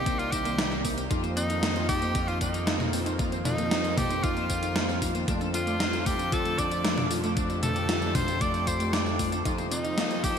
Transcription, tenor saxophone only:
0, 0, Header, 1, 2, 480
1, 0, Start_track
1, 0, Tempo, 521739
1, 1018, Time_signature, 4, 2, 24, 8
1, 9556, End_track
2, 0, Start_track
2, 0, Title_t, "Tenor saxophone"
2, 0, Program_c, 0, 66
2, 0, Note_on_c, 0, 67, 116
2, 177, Note_on_c, 0, 65, 101
2, 190, Note_off_c, 0, 67, 0
2, 297, Note_on_c, 0, 67, 100
2, 310, Note_off_c, 0, 65, 0
2, 778, Note_off_c, 0, 67, 0
2, 1257, Note_on_c, 0, 63, 99
2, 1704, Note_off_c, 0, 63, 0
2, 1738, Note_on_c, 0, 67, 121
2, 2098, Note_on_c, 0, 65, 103
2, 2112, Note_off_c, 0, 67, 0
2, 2212, Note_off_c, 0, 65, 0
2, 2217, Note_on_c, 0, 63, 89
2, 2664, Note_off_c, 0, 63, 0
2, 3177, Note_on_c, 0, 63, 100
2, 3657, Note_on_c, 0, 67, 110
2, 3671, Note_off_c, 0, 63, 0
2, 3897, Note_on_c, 0, 65, 99
2, 3911, Note_off_c, 0, 67, 0
2, 4618, Note_off_c, 0, 65, 0
2, 5101, Note_on_c, 0, 65, 94
2, 5581, Note_on_c, 0, 67, 94
2, 5595, Note_off_c, 0, 65, 0
2, 5821, Note_on_c, 0, 69, 101
2, 5835, Note_off_c, 0, 67, 0
2, 6061, Note_on_c, 0, 74, 107
2, 6074, Note_off_c, 0, 69, 0
2, 6540, Note_off_c, 0, 74, 0
2, 7018, Note_on_c, 0, 69, 98
2, 7502, Note_on_c, 0, 72, 103
2, 7516, Note_off_c, 0, 69, 0
2, 7741, Note_on_c, 0, 74, 114
2, 7755, Note_off_c, 0, 72, 0
2, 7981, Note_on_c, 0, 72, 102
2, 7995, Note_off_c, 0, 74, 0
2, 8220, Note_on_c, 0, 74, 102
2, 8234, Note_off_c, 0, 72, 0
2, 8579, Note_off_c, 0, 74, 0
2, 8941, Note_on_c, 0, 63, 104
2, 9420, Note_on_c, 0, 67, 120
2, 9433, Note_off_c, 0, 63, 0
2, 9556, Note_off_c, 0, 67, 0
2, 9556, End_track
0, 0, End_of_file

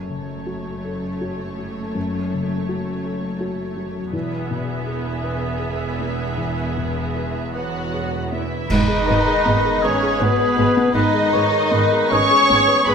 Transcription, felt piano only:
0, 0, Header, 1, 2, 480
1, 0, Start_track
1, 0, Tempo, 734394
1, 1277, Time_signature, 6, 3, 24, 8
1, 3664, Tempo, 773196
1, 5584, Tempo, 746269
1, 7024, Tempo, 771208
1, 8275, End_track
2, 0, Start_track
2, 0, Title_t, "Felt piano"
2, 0, Program_c, 0, 0
2, 0, Control_c, 0, 64, 127
2, 0, Note_on_c, 0, 42, 35
2, 64, Note_on_c, 0, 49, 26
2, 304, Note_on_c, 0, 66, 26
2, 456, Note_off_c, 0, 49, 0
2, 554, Note_on_c, 0, 69, 31
2, 695, Note_off_c, 0, 66, 0
2, 793, Note_on_c, 0, 66, 32
2, 940, Note_off_c, 0, 69, 0
2, 1033, Note_on_c, 0, 54, 35
2, 1179, Note_off_c, 0, 66, 0
2, 1251, Note_off_c, 0, 42, 0
2, 1276, Note_on_c, 0, 42, 42
2, 1290, Control_c, 0, 64, 0
2, 1413, Control_c, 0, 64, 127
2, 1421, Note_off_c, 0, 54, 0
2, 1527, Note_on_c, 0, 49, 33
2, 1757, Note_on_c, 0, 66, 36
2, 1904, Note_off_c, 0, 49, 0
2, 1995, Note_on_c, 0, 69, 41
2, 2135, Note_off_c, 0, 66, 0
2, 2224, Note_on_c, 0, 66, 40
2, 2372, Note_off_c, 0, 69, 0
2, 2460, Note_on_c, 0, 54, 39
2, 2604, Note_off_c, 0, 66, 0
2, 2675, Note_off_c, 0, 42, 0
2, 2698, Note_on_c, 0, 40, 53
2, 2699, Note_off_c, 0, 54, 0
2, 2713, Control_c, 0, 64, 0
2, 2804, Control_c, 0, 64, 127
2, 2944, Note_on_c, 0, 47, 41
2, 3179, Note_on_c, 0, 68, 42
2, 3324, Note_off_c, 0, 47, 0
2, 3420, Note_on_c, 0, 71, 43
2, 3567, Note_off_c, 0, 68, 0
2, 3654, Note_on_c, 0, 68, 39
2, 3809, Note_off_c, 0, 71, 0
2, 3902, Note_on_c, 0, 59, 39
2, 4043, Note_off_c, 0, 68, 0
2, 4118, Note_off_c, 0, 40, 0
2, 4140, Note_on_c, 0, 40, 39
2, 4157, Control_c, 0, 64, 0
2, 4248, Control_c, 0, 64, 127
2, 4288, Note_off_c, 0, 59, 0
2, 4387, Note_on_c, 0, 47, 29
2, 4626, Note_on_c, 0, 68, 31
2, 4770, Note_off_c, 0, 47, 0
2, 4869, Note_on_c, 0, 71, 33
2, 5010, Note_off_c, 0, 68, 0
2, 5110, Note_on_c, 0, 68, 29
2, 5251, Note_off_c, 0, 71, 0
2, 5349, Note_on_c, 0, 59, 30
2, 5493, Note_off_c, 0, 68, 0
2, 5558, Note_off_c, 0, 40, 0
2, 5582, Note_on_c, 0, 44, 62
2, 5586, Note_off_c, 0, 59, 0
2, 5596, Control_c, 0, 64, 0
2, 5700, Note_on_c, 0, 68, 54
2, 5709, Control_c, 0, 64, 127
2, 5824, Note_on_c, 0, 71, 58
2, 5897, Note_off_c, 0, 68, 0
2, 5948, Note_on_c, 0, 68, 54
2, 6019, Note_off_c, 0, 71, 0
2, 6069, Note_on_c, 0, 59, 51
2, 6141, Note_off_c, 0, 68, 0
2, 6195, Note_on_c, 0, 68, 50
2, 6261, Note_off_c, 0, 59, 0
2, 6314, Note_on_c, 0, 71, 54
2, 6383, Note_off_c, 0, 68, 0
2, 6438, Note_on_c, 0, 68, 64
2, 6501, Note_off_c, 0, 71, 0
2, 6558, Note_on_c, 0, 59, 51
2, 6623, Note_off_c, 0, 68, 0
2, 6673, Note_on_c, 0, 71, 58
2, 6742, Note_off_c, 0, 59, 0
2, 6792, Note_on_c, 0, 68, 53
2, 6860, Note_off_c, 0, 71, 0
2, 6916, Note_on_c, 0, 59, 55
2, 6980, Note_off_c, 0, 68, 0
2, 6997, Note_off_c, 0, 44, 0
2, 7028, Note_on_c, 0, 44, 64
2, 7036, Control_c, 0, 64, 0
2, 7100, Note_off_c, 0, 59, 0
2, 7148, Note_on_c, 0, 68, 53
2, 7150, Control_c, 0, 64, 127
2, 7264, Note_on_c, 0, 71, 52
2, 7339, Note_off_c, 0, 68, 0
2, 7384, Note_on_c, 0, 68, 51
2, 7460, Note_off_c, 0, 71, 0
2, 7505, Note_on_c, 0, 59, 47
2, 7583, Note_off_c, 0, 68, 0
2, 7632, Note_on_c, 0, 68, 50
2, 7705, Note_off_c, 0, 59, 0
2, 7758, Note_on_c, 0, 71, 51
2, 7828, Note_off_c, 0, 68, 0
2, 7875, Note_on_c, 0, 68, 59
2, 7949, Note_off_c, 0, 71, 0
2, 7993, Note_on_c, 0, 59, 51
2, 8064, Note_off_c, 0, 68, 0
2, 8106, Note_on_c, 0, 71, 58
2, 8180, Note_off_c, 0, 59, 0
2, 8227, Note_on_c, 0, 68, 58
2, 8275, Note_off_c, 0, 44, 0
2, 8275, Note_off_c, 0, 68, 0
2, 8275, Note_off_c, 0, 71, 0
2, 8275, End_track
0, 0, End_of_file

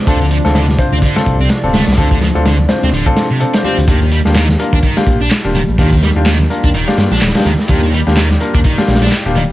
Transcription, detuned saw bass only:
0, 0, Header, 1, 2, 480
1, 0, Start_track
1, 0, Tempo, 476190
1, 74, Time_signature, 4, 2, 24, 8
1, 9599, End_track
2, 0, Start_track
2, 0, Title_t, "Detuned saw bass"
2, 0, Program_c, 0, 39
2, 74, Note_on_c, 0, 38, 98
2, 405, Note_off_c, 0, 38, 0
2, 455, Note_on_c, 0, 38, 98
2, 761, Note_off_c, 0, 38, 0
2, 933, Note_on_c, 0, 38, 87
2, 1013, Note_off_c, 0, 38, 0
2, 1275, Note_on_c, 0, 36, 100
2, 1383, Note_off_c, 0, 36, 0
2, 1412, Note_on_c, 0, 36, 107
2, 1492, Note_off_c, 0, 36, 0
2, 1652, Note_on_c, 0, 26, 86
2, 1833, Note_off_c, 0, 26, 0
2, 1892, Note_on_c, 0, 36, 88
2, 1972, Note_off_c, 0, 36, 0
2, 1996, Note_on_c, 0, 38, 100
2, 2326, Note_off_c, 0, 38, 0
2, 2372, Note_on_c, 0, 38, 102
2, 2679, Note_off_c, 0, 38, 0
2, 2851, Note_on_c, 0, 38, 84
2, 2932, Note_off_c, 0, 38, 0
2, 2952, Note_on_c, 0, 26, 104
2, 3062, Note_off_c, 0, 26, 0
2, 3810, Note_on_c, 0, 38, 84
2, 3891, Note_off_c, 0, 38, 0
2, 3909, Note_on_c, 0, 39, 100
2, 4243, Note_off_c, 0, 39, 0
2, 4291, Note_on_c, 0, 39, 101
2, 4599, Note_off_c, 0, 39, 0
2, 4768, Note_on_c, 0, 39, 85
2, 4850, Note_off_c, 0, 39, 0
2, 5107, Note_on_c, 0, 34, 101
2, 5219, Note_off_c, 0, 34, 0
2, 5250, Note_on_c, 0, 34, 107
2, 5331, Note_off_c, 0, 34, 0
2, 5494, Note_on_c, 0, 27, 87
2, 5674, Note_off_c, 0, 27, 0
2, 5733, Note_on_c, 0, 34, 90
2, 5813, Note_off_c, 0, 34, 0
2, 5830, Note_on_c, 0, 39, 103
2, 6163, Note_off_c, 0, 39, 0
2, 6212, Note_on_c, 0, 39, 100
2, 6519, Note_off_c, 0, 39, 0
2, 6693, Note_on_c, 0, 39, 83
2, 6773, Note_off_c, 0, 39, 0
2, 6794, Note_on_c, 0, 27, 105
2, 6902, Note_off_c, 0, 27, 0
2, 7035, Note_on_c, 0, 43, 104
2, 7143, Note_off_c, 0, 43, 0
2, 7170, Note_on_c, 0, 34, 97
2, 7251, Note_off_c, 0, 34, 0
2, 7277, Note_on_c, 0, 27, 99
2, 7384, Note_off_c, 0, 27, 0
2, 7516, Note_on_c, 0, 39, 96
2, 7624, Note_off_c, 0, 39, 0
2, 7755, Note_on_c, 0, 39, 101
2, 8086, Note_off_c, 0, 39, 0
2, 8136, Note_on_c, 0, 39, 102
2, 8441, Note_off_c, 0, 39, 0
2, 8615, Note_on_c, 0, 39, 85
2, 8694, Note_off_c, 0, 39, 0
2, 8955, Note_on_c, 0, 34, 105
2, 9063, Note_off_c, 0, 34, 0
2, 9090, Note_on_c, 0, 34, 103
2, 9171, Note_off_c, 0, 34, 0
2, 9333, Note_on_c, 0, 27, 85
2, 9514, Note_off_c, 0, 27, 0
2, 9599, End_track
0, 0, End_of_file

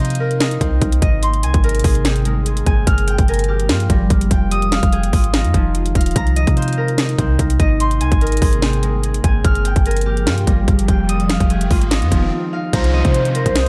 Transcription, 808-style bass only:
0, 0, Header, 1, 2, 480
1, 0, Start_track
1, 0, Key_signature, -3, "minor"
1, 0, Tempo, 410959
1, 1433, Time_signature, 4, 2, 24, 8
1, 15985, End_track
2, 0, Start_track
2, 0, Title_t, "808-style bass"
2, 0, Program_c, 0, 38
2, 0, Note_on_c, 0, 48, 102
2, 679, Note_off_c, 0, 48, 0
2, 712, Note_on_c, 0, 36, 106
2, 943, Note_off_c, 0, 36, 0
2, 953, Note_on_c, 0, 36, 103
2, 1183, Note_off_c, 0, 36, 0
2, 1193, Note_on_c, 0, 32, 105
2, 1672, Note_on_c, 0, 36, 96
2, 1690, Note_off_c, 0, 32, 0
2, 1793, Note_off_c, 0, 36, 0
2, 1800, Note_on_c, 0, 32, 100
2, 2139, Note_off_c, 0, 32, 0
2, 2153, Note_on_c, 0, 32, 104
2, 3074, Note_off_c, 0, 32, 0
2, 3113, Note_on_c, 0, 32, 102
2, 3343, Note_off_c, 0, 32, 0
2, 3353, Note_on_c, 0, 31, 108
2, 3705, Note_off_c, 0, 31, 0
2, 3720, Note_on_c, 0, 31, 103
2, 4313, Note_on_c, 0, 43, 99
2, 4331, Note_off_c, 0, 31, 0
2, 4541, Note_off_c, 0, 43, 0
2, 4552, Note_on_c, 0, 31, 108
2, 4783, Note_off_c, 0, 31, 0
2, 4793, Note_on_c, 0, 31, 104
2, 5023, Note_off_c, 0, 31, 0
2, 5033, Note_on_c, 0, 29, 102
2, 5616, Note_off_c, 0, 29, 0
2, 5640, Note_on_c, 0, 29, 102
2, 5979, Note_off_c, 0, 29, 0
2, 5993, Note_on_c, 0, 32, 104
2, 6360, Note_on_c, 0, 41, 99
2, 6377, Note_off_c, 0, 32, 0
2, 6467, Note_off_c, 0, 41, 0
2, 6472, Note_on_c, 0, 29, 102
2, 6933, Note_off_c, 0, 29, 0
2, 6953, Note_on_c, 0, 27, 102
2, 7183, Note_off_c, 0, 27, 0
2, 7193, Note_on_c, 0, 36, 112
2, 7545, Note_off_c, 0, 36, 0
2, 7560, Note_on_c, 0, 48, 98
2, 8360, Note_off_c, 0, 48, 0
2, 8392, Note_on_c, 0, 36, 105
2, 8623, Note_off_c, 0, 36, 0
2, 8633, Note_on_c, 0, 36, 106
2, 8863, Note_off_c, 0, 36, 0
2, 8873, Note_on_c, 0, 32, 104
2, 9352, Note_on_c, 0, 36, 94
2, 9370, Note_off_c, 0, 32, 0
2, 9473, Note_off_c, 0, 36, 0
2, 9480, Note_on_c, 0, 32, 101
2, 9819, Note_off_c, 0, 32, 0
2, 9833, Note_on_c, 0, 32, 104
2, 10754, Note_off_c, 0, 32, 0
2, 10793, Note_on_c, 0, 32, 105
2, 11023, Note_off_c, 0, 32, 0
2, 11032, Note_on_c, 0, 31, 112
2, 11385, Note_off_c, 0, 31, 0
2, 11400, Note_on_c, 0, 31, 104
2, 11993, Note_on_c, 0, 43, 96
2, 12010, Note_off_c, 0, 31, 0
2, 12221, Note_off_c, 0, 43, 0
2, 12232, Note_on_c, 0, 31, 104
2, 12463, Note_off_c, 0, 31, 0
2, 12473, Note_on_c, 0, 31, 108
2, 12703, Note_off_c, 0, 31, 0
2, 12713, Note_on_c, 0, 29, 103
2, 13296, Note_off_c, 0, 29, 0
2, 13320, Note_on_c, 0, 29, 98
2, 13659, Note_off_c, 0, 29, 0
2, 13673, Note_on_c, 0, 32, 107
2, 14040, Note_on_c, 0, 41, 102
2, 14058, Note_off_c, 0, 32, 0
2, 14147, Note_off_c, 0, 41, 0
2, 14152, Note_on_c, 0, 29, 102
2, 14383, Note_off_c, 0, 29, 0
2, 14872, Note_on_c, 0, 36, 109
2, 15225, Note_off_c, 0, 36, 0
2, 15240, Note_on_c, 0, 48, 103
2, 15701, Note_off_c, 0, 48, 0
2, 15720, Note_on_c, 0, 36, 109
2, 15978, Note_off_c, 0, 36, 0
2, 15985, End_track
0, 0, End_of_file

